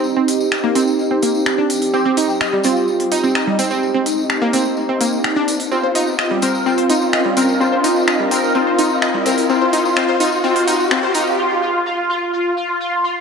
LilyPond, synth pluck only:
\new Staff \with { instrumentName = "Synth pluck" } { \time 4/4 \key ees \major \tempo 4 = 127 r16 c'16 r8. bes16 c'16 r8 c'16 bes16 r8 d'16 r8 | c'16 c'16 ees'16 r16 ees''16 g16 c'16 r8. ees'16 c'16 ees''16 g16 c'16 c'16 | r16 c'16 r8. bes16 c'16 r8 c'16 bes16 r8 d'16 r8 | c'16 c''16 ees'16 r16 ees''16 g16 c'16 r16 c'16 c''16 ees'16 r16 ees''16 g16 c'16 r16 |
c'16 c''16 ees'16 r16 ees''16 g16 c'16 r16 c'16 c''16 ees'16 r16 ees''16 g16 c'16 r16 | c'16 c''16 ees'16 r16 c'16 c''16 ees'16 r16 c'16 c''16 ees'16 r16 c'16 c''16 ees'16 r16 | r1 | }